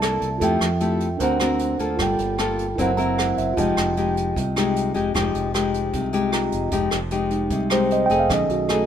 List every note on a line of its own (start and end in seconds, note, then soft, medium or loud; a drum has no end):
0.00 0.18 C2 medium
0.00 0.39 C3 medium
0.00 0.28 A#3 soft
0.00 0.38 E4 medium
0.00 0.29 E4 soft
0.00 0.29 A4 medium
0.00 0.40 D5 soft
0.00 0.41 A5 medium
0.00 cross-stick medium
0.00 closed hi-hat soft
0.21 0.40 C2 medium
0.21 closed hi-hat soft
0.38 0.60 F2 medium
0.38 1.18 F3 medium
0.38 0.67 A3 medium
0.38 0.67 E4 medium
0.38 1.17 F4 soft
0.38 0.67 G4 medium
0.38 1.18 A4 soft
0.38 1.19 E5 soft
0.38 kick medium
0.38 closed hi-hat medium
0.44 1.20 G5 medium
0.61 1.16 F2 medium
0.61 cross-stick medium
0.61 closed hi-hat soft
0.80 1.07 A3 medium
0.80 1.07 E4 soft
0.80 1.08 G4 medium
0.80 closed hi-hat soft
1.00 closed hi-hat soft
1.17 1.75 D2 medium
1.17 1.97 D3 medium
1.17 1.37 C4 medium
1.17 1.96 D4 medium
1.17 1.37 F#4 soft
1.17 1.97 A#4 medium
1.17 1.98 C5 soft
1.17 kick medium
1.17 closed hi-hat medium
1.22 1.37 A#4 medium
1.22 1.99 F#5 medium
1.40 1.76 C4 medium
1.40 1.77 F#4 medium
1.40 1.77 A#4 medium
1.40 cross-stick medium
1.40 closed hi-hat soft
1.59 closed hi-hat soft
1.79 1.98 D2 medium
1.79 2.35 A#3 medium
1.79 2.36 F4 medium
1.79 2.36 A4 medium
1.79 closed hi-hat soft
1.96 2.17 G1 medium
1.96 2.76 G3 soft
1.96 2.75 F4 medium
1.96 2.76 A4 soft
1.96 kick medium
1.96 cross-stick medium
1.96 closed hi-hat soft
2.02 2.78 G5 medium
2.18 2.74 G1 medium
2.18 closed hi-hat soft
2.38 2.65 A#3 medium
2.38 2.65 F4 soft
2.38 2.65 A4 medium
2.38 cross-stick medium
2.38 closed hi-hat soft
2.59 closed hi-hat soft
2.76 3.33 F#1 medium
2.76 3.55 F#3 medium
2.76 2.90 C4 soft
2.76 3.54 E4 medium
2.76 2.90 E4 medium
2.76 3.55 A#4 soft
2.76 2.90 A#4 medium
2.76 kick medium
2.76 closed hi-hat medium
2.80 3.56 C5 soft
2.80 3.17 F#5 medium
2.97 3.53 C4 medium
2.97 3.54 E4 medium
2.97 3.54 A#4 medium
2.97 3.16 A#5 soft
2.97 closed hi-hat soft
3.18 3.36 F#5 soft
3.18 cross-stick medium
3.18 closed hi-hat soft
3.37 3.56 F#1 medium
3.37 3.56 E5 medium
3.37 closed hi-hat soft
3.54 3.75 F1 medium
3.54 4.34 F3 medium
3.54 3.93 G#3 medium
3.54 3.93 D#4 medium
3.54 6.27 F4 medium
3.54 kick medium
3.58 3.94 G4 medium
3.58 6.29 D#5 soft
3.58 6.30 G5 medium
3.58 closed hi-hat medium
3.77 4.32 F1 medium
3.77 cross-stick medium
3.77 closed hi-hat soft
3.97 4.36 G#3 medium
3.97 4.36 D#4 medium
3.97 4.36 G4 medium
3.97 closed hi-hat soft
4.17 closed hi-hat soft
4.36 4.91 C2 loud
4.36 5.13 C3 medium
4.36 kick medium
4.36 closed hi-hat medium
4.56 4.92 G#3 medium
4.56 4.92 D#4 medium
4.56 4.92 G4 medium
4.56 cross-stick medium
4.56 closed hi-hat soft
4.76 closed hi-hat soft
4.94 5.13 F1 medium
4.94 5.11 G#3 medium
4.94 5.11 D#4 medium
4.94 5.12 G4 medium
4.94 closed hi-hat soft
5.14 5.33 F1 medium
5.14 5.91 F3 medium
5.14 5.51 G#3 soft
5.14 5.51 D#4 medium
5.14 5.51 G4 medium
5.14 kick soft
5.14 cross-stick medium
5.14 closed hi-hat soft
5.34 5.89 F1 medium
5.34 closed hi-hat soft
5.54 6.10 G#3 medium
5.54 6.10 D#4 soft
5.54 6.10 G4 medium
5.54 cross-stick medium
5.54 closed hi-hat soft
5.74 closed hi-hat soft
5.93 6.49 C2 medium
5.93 6.70 C3 medium
5.93 kick medium
5.93 closed hi-hat medium
6.13 6.69 G#3 medium
6.13 6.69 D#4 medium
6.13 6.70 G4 medium
6.13 closed hi-hat soft
6.31 6.71 F4 soft
6.31 6.72 D#5 soft
6.31 6.73 A#5 soft
6.31 cross-stick medium
6.31 closed hi-hat soft
6.52 6.71 F1 medium
6.52 closed hi-hat soft
6.71 6.90 F1 medium
6.71 7.49 F3 medium
6.71 6.97 G#3 medium
6.71 6.98 D#4 soft
6.71 6.98 G4 medium
6.71 kick medium
6.71 closed hi-hat medium
6.91 7.47 F1 medium
6.91 cross-stick medium
6.91 closed hi-hat soft
7.11 7.67 G#3 medium
7.11 7.68 D#4 soft
7.11 7.68 G4 medium
7.11 closed hi-hat soft
7.30 7.87 G#3 soft
7.30 7.88 D#4 soft
7.30 closed hi-hat soft
7.50 8.06 C2 medium
7.50 8.28 C3 medium
7.50 kick medium
7.50 closed hi-hat medium
7.70 8.07 G#3 medium
7.70 8.07 D#4 medium
7.70 8.07 G4 medium
7.70 7.90 C5 medium
7.70 cross-stick medium
7.70 closed hi-hat soft
7.91 8.04 D#5 medium
7.91 closed hi-hat soft
8.06 8.28 F1 medium
8.06 8.66 A3 medium
8.06 8.18 G5 medium
8.10 8.66 D#4 medium
8.10 8.66 G#4 medium
8.10 closed hi-hat soft
8.19 8.31 F5 medium
8.29 8.48 B1 medium
8.29 8.86 B2 medium
8.29 8.86 D#3 soft
8.29 8.86 A3 soft
8.29 8.86 C#4 soft
8.29 kick medium
8.29 cross-stick medium
8.29 closed hi-hat soft
8.33 8.51 D#5 medium
8.49 8.86 B1 medium
8.49 8.69 F#4 soft
8.49 closed hi-hat soft
8.69 8.86 A3 medium
8.69 8.86 D#4 medium
8.69 8.86 G#4 medium
8.69 8.86 A4 medium
8.69 cross-stick medium
8.69 closed hi-hat soft